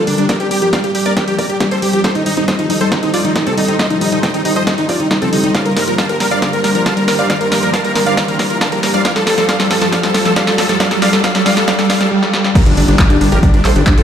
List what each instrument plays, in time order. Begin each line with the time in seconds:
Already playing: analog synth pad G3 G4 A#4 D5, riser
0.07 synth pluck G3 D4, supersaw synth D4, open hi-hat
0.18 synth pluck G3 D4, supersaw synth D4, closed hi-hat
0.29 synth pluck G3 D5, supersaw synth A#4 D5, kick, snare, closed hi-hat
0.40 synth pluck C4 G4, supersaw synth G4, closed hi-hat
0.51 synth pluck G3 G4, supersaw synth G4, open hi-hat
0.62 synth pluck F3 G4, supersaw synth G4, closed hi-hat
0.73 synth pluck G3 F5, supersaw synth D5 F5, kick, snare, closed hi-hat
0.84 synth pluck G3 G4, supersaw synth G4, closed hi-hat
0.95 synth pluck G3 G4, supersaw synth G4, open hi-hat
1.06 synth pluck C4 D5, supersaw synth A#4 D5, closed hi-hat
1.17 synth pluck G3 G4, supersaw synth G4, kick, snare, closed hi-hat
1.28 synth pluck F3 G4, supersaw synth G4, closed hi-hat
1.39 synth pluck G3 D5, supersaw synth A#4 D5, kick, open hi-hat
1.49 synth pluck G3 G4, supersaw synth G4, closed hi-hat
1.60 synth pluck G3 G4, supersaw synth G4, kick, snare, closed hi-hat
1.71 synth pluck C4 C5, supersaw synth A4 C5, closed hi-hat
1.82 synth pluck G3 G4, supersaw synth G4, open hi-hat
1.93 synth pluck F3 G4, supersaw synth G4, closed hi-hat
2.04 synth pluck G3 C5, analog synth pad D#4 A4 C5, supersaw synth A4 C5, kick, snare, closed hi-hat
2.15 synth pluck G3 D#4, supersaw synth D#4, closed hi-hat
2.26 synth pluck G3 D#4, supersaw synth D#4, open hi-hat
2.37 synth pluck C4 D#4, supersaw synth D#4, closed hi-hat
2.48 synth pluck G3 D#5, supersaw synth C5 D#5, kick, snare, closed hi-hat
2.59 synth pluck F3 D#4, supersaw synth D#4, closed hi-hat
2.70 synth pluck G3 D#4, supersaw synth D#4, open hi-hat
2.81 synth pluck G3 C5, supersaw synth A4 C5, closed hi-hat
2.92 synth pluck G3 D#4, supersaw synth D#4, kick, snare, closed hi-hat
3.03 synth pluck C4 D#4, supersaw synth D#4, closed hi-hat
3.14 synth pluck G3 D5, supersaw synth F4 D5, open hi-hat
3.25 synth pluck F3 D#4, supersaw synth D#4, closed hi-hat
3.36 synth pluck G3 D#4, supersaw synth D#4, kick, snare, closed hi-hat
3.47 synth pluck G3 A4, supersaw synth C4 A4, closed hi-hat
3.57 synth pluck G3 D#4, supersaw synth D#4, open hi-hat
3.68 synth pluck C4 D#4, supersaw synth D#4, closed hi-hat
3.79 synth pluck G3 D#5, supersaw synth C5 D#5, kick, snare, closed hi-hat
3.90 synth pluck F3 D#4, supersaw synth D#4, closed hi-hat
4.01 synth pluck G3 D#4, supersaw synth D#4, open hi-hat
4.12 synth pluck G3 D#4, supersaw synth D#4, closed hi-hat
4.23 synth pluck G3 G5, supersaw synth D#5 G5, kick, snare, closed hi-hat
4.34 synth pluck C4 D#4, supersaw synth D#4, closed hi-hat
4.45 synth pluck G3 D#4, supersaw synth D#4, open hi-hat
4.56 synth pluck F3 D#5, supersaw synth C5 D#5, closed hi-hat
4.67 synth pluck G3 D#4, supersaw synth D#4, kick, snare, closed hi-hat
4.78 synth pluck G3 D#4, supersaw synth D#4, closed hi-hat
4.89 synth pluck G3 D5, supersaw synth F4 D5, kick, open hi-hat
5.00 synth pluck C4 D#4, supersaw synth D#4, closed hi-hat
5.11 synth pluck G3 D#4, supersaw synth D#4, kick, snare, closed hi-hat
5.22 synth pluck F3 A4, supersaw synth C4 A4, closed hi-hat
5.33 synth pluck G3 D#4, supersaw synth D#4, open hi-hat
5.44 synth pluck G3 D#4, supersaw synth D#4, closed hi-hat
5.55 synth pluck G3 F5, analog synth pad D4 A#4, supersaw synth D5 F5, kick, snare, closed hi-hat
5.65 synth pluck G3 A#4, supersaw synth A#4, closed hi-hat
5.76 synth pluck G3 A#4, supersaw synth A#4, snare, open hi-hat
5.87 synth pluck F3 A#4, supersaw synth A#4, closed hi-hat
5.98 synth pluck G3 A5, supersaw synth F5 A5, kick, snare, closed hi-hat
6.09 synth pluck G3 A#4, supersaw synth A#4, closed hi-hat
6.20 synth pluck G3 A#4, supersaw synth A#4, snare, open hi-hat
6.31 synth pluck G3 F5, supersaw synth D5 F5, closed hi-hat
6.42 synth pluck G3 F5, supersaw synth D5 F5, kick, snare, closed hi-hat
6.53 synth pluck G3 A#4, supersaw synth A#4, closed hi-hat
6.64 synth pluck G3 A#4, supersaw synth A#4, snare, open hi-hat
6.75 synth pluck F3 A#4, supersaw synth A#4, closed hi-hat
6.86 synth pluck G3 A5, supersaw synth F5 A5, kick, snare, closed hi-hat
6.97 synth pluck G3 A#4, supersaw synth A#4, closed hi-hat
7.08 synth pluck G3 A#4, supersaw synth A#4, snare, open hi-hat
7.19 synth pluck G3 F5, supersaw synth D5 F5, closed hi-hat
7.30 synth pluck G3 F5, supersaw synth D5 F5, kick, snare, closed hi-hat
7.41 synth pluck G3 A#4, supersaw synth A#4, closed hi-hat
7.52 synth pluck G3 A#4, supersaw synth A#4, snare, open hi-hat
7.63 synth pluck F3 A#4, supersaw synth A#4, closed hi-hat
7.74 synth pluck G3 A5, supersaw synth F5 A5, kick, snare, closed hi-hat
7.84 synth pluck G3 A#4, supersaw synth A#4, closed hi-hat
7.95 synth pluck G3 A#4, supersaw synth A#4, snare, open hi-hat
8.06 synth pluck G3 F5, supersaw synth D5 F5, closed hi-hat
8.17 synth pluck G3 F5, supersaw synth D5 F5, kick, snare, closed hi-hat
8.28 synth pluck G3 A#4, supersaw synth A#4, closed hi-hat
8.39 synth pluck G3 A#4, supersaw synth A#4, kick, snare, open hi-hat
8.50 synth pluck F3 A#4, supersaw synth A#4
8.61 synth pluck G3 A5, supersaw synth F5 A5, kick, snare, closed hi-hat
8.72 synth pluck G3 A#4, supersaw synth A#4, closed hi-hat
8.83 synth pluck G3 A#4, supersaw synth A#4, snare, open hi-hat
8.94 synth pluck G3 F5, supersaw synth D5 F5, closed hi-hat
9.05 synth pluck G3 F5, analog synth pad G3 F4 A4, supersaw synth D5 F5, kick, snare, closed hi-hat
9.16 synth pluck G3 A4, supersaw synth A4, snare, closed hi-hat
9.27 synth pluck G3 A4, supersaw synth A4, snare, open hi-hat
9.38 synth pluck F3 A4, supersaw synth A4, snare, closed hi-hat
9.49 synth pluck G3 F5, supersaw synth D5 F5, kick, snare, closed hi-hat
9.60 synth pluck G3 A4, supersaw synth A4, snare, closed hi-hat
9.70 synth pluck G3 A4, supersaw synth A4, snare, open hi-hat
9.82 synth pluck F3 A4, supersaw synth A4, snare, closed hi-hat
9.92 synth pluck G3 F5, supersaw synth D5 F5, kick, snare, closed hi-hat
10.03 synth pluck G3 A4, supersaw synth A4, snare, closed hi-hat
10.14 synth pluck G3 A4, supersaw synth A4, snare, open hi-hat
10.25 synth pluck F3 A4, supersaw synth A4, snare, closed hi-hat
10.36 synth pluck G3 F5, supersaw synth D5 F5, kick, snare, closed hi-hat
10.47 synth pluck G3 A4, supersaw synth A4, snare, closed hi-hat
10.58 synth pluck G3 A4, supersaw synth A4, snare, open hi-hat
10.69 synth pluck F3 A4, supersaw synth A4, snare, closed hi-hat
10.80 synth pluck G3 F5, analog synth pad D5, supersaw synth D5 F5, kick, snare, closed hi-hat
10.91 synth pluck G3 A4, supersaw synth A4, snare, closed hi-hat
11.02 synth pluck G3 F5, supersaw synth D5 F5, snare, open hi-hat
11.13 synth pluck G3 A4, supersaw synth A4, snare, closed hi-hat
11.24 synth pluck G3 F5, supersaw synth D5 F5, kick, snare, closed hi-hat
11.35 synth pluck G3 A4, supersaw synth A4, snare, closed hi-hat
11.46 synth pluck G3 F5, supersaw synth D5 F5, snare, open hi-hat
11.57 synth pluck G3 A4, supersaw synth A4, snare, closed hi-hat
11.67 synth pluck G3 F5, supersaw synth D5 F5, kick, snare, closed hi-hat
11.79 synth pluck G3 A4, supersaw synth A4, snare, closed hi-hat
11.90 synth pluck G3 F5, supersaw synth D5 F5, kick, snare, open hi-hat
12.00 synth pluck G3 A4, supersaw synth A4, snare, closed hi-hat
12.12 synth pluck G3
12.23 synth pluck G3, snare
12.33 synth pluck G3, snare
12.44 synth pluck G3, snare
12.55 synth pluck G3 A#4, analog synth pad G3 G4 A#4 D5, supersaw synth G4 A#4, kick, closed hi-hat, crash, downlifter
12.66 analog synth bass G1, synth pluck F3 D4, supersaw synth D4, closed hi-hat
12.77 analog synth bass G1, synth pluck G3 D4, supersaw synth D4, open hi-hat
12.88 analog synth bass G1, synth pluck G3 D4, supersaw synth D4, closed hi-hat
12.99 synth pluck G3 D5, supersaw synth A#4 D5, kick, clap, closed hi-hat
13.10 analog synth bass G1, synth pluck G3 D4, supersaw synth D4, closed hi-hat
13.21 analog synth bass G1, synth pluck G3 D4, supersaw synth D4, open hi-hat
13.32 analog synth bass G1, synth pluck F3 A#4, supersaw synth G4 A#4, closed hi-hat
13.43 synth pluck G3 D4, supersaw synth D4, kick, closed hi-hat
13.54 analog synth bass G1, synth pluck G3 D4, supersaw synth D4, closed hi-hat
13.65 analog synth bass A1, synth pluck G3 C5, supersaw synth A4 C5, clap, open hi-hat
13.76 analog synth bass G1, synth pluck G3 D4, supersaw synth D4, closed hi-hat
13.87 synth pluck G3 D4, supersaw synth D4, kick, clap, closed hi-hat
13.98 analog synth bass G1, synth pluck F3 A4, supersaw synth F4 A4, closed hi-hat